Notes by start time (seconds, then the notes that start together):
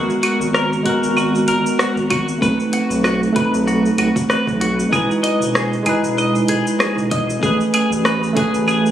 Already playing: G#3 B3 F#4 A#4
0.10 cabasa
0.23 F#4, closed hi-hat, claves
0.40 G#1, cabasa
0.54 A#4, cross-stick, cabasa
0.73 cabasa
0.83 G#3 B3 F#4, kick, closed hi-hat
0.87 F#4 A#4
1.03 G#1, cabasa
1.17 F#4, cabasa, claves
1.35 cabasa
1.48 G#1 A#4, closed hi-hat
1.66 cabasa
1.79 F#4, cross-stick, cabasa
1.96 G#1, cabasa
2.10 F#4, kick, closed hi-hat, claves
2.28 cabasa
2.38 B1 A3 C4 B4, kick
2.43 D#4 B4, cabasa
2.60 cabasa
2.73 F#4, closed hi-hat
2.90 B1, cabasa
3.04 F#4, cross-stick, cabasa, claves
3.23 cabasa
3.32 A3 C4 B4, kick, closed hi-hat
3.37 D#4 B4
3.53 B1, cabasa
3.68 F#4, cabasa
3.86 cabasa
3.98 B1 F#4, closed hi-hat, claves
4.16 kick, cabasa
4.30 B4, cross-stick, cabasa
4.47 B1, kick, cabasa
4.61 F#4, closed hi-hat
4.80 cabasa
4.89 E1 G#3 D#4 G#4, kick, claves
4.93 E4 B4, cabasa
5.11 cabasa
5.23 D#5, closed hi-hat
5.41 E1, cabasa
5.55 G#4, cross-stick, cabasa
5.73 cabasa
5.83 G#3 D#4 G#4, kick, closed hi-hat, claves
5.87 E4 B4
6.03 E1, cabasa
6.18 D#5, cabasa
6.35 cabasa
6.48 E1 G#4, closed hi-hat
6.67 cabasa
6.80 G#4, cross-stick, cabasa, claves
6.97 E1, cabasa
7.11 D#5, kick, closed hi-hat
7.30 cabasa
7.39 A1 A3 C#4 G#4, kick, cabasa
7.46 B4
7.61 cabasa
7.74 G#4, closed hi-hat, claves
7.91 A1, cabasa
8.05 B4, cross-stick, cabasa
8.23 cabasa
8.33 A3 C#4 G#4, kick, closed hi-hat
8.37 G#4 B4
8.53 A1, cabasa
8.68 G#4, cabasa, claves
8.86 cabasa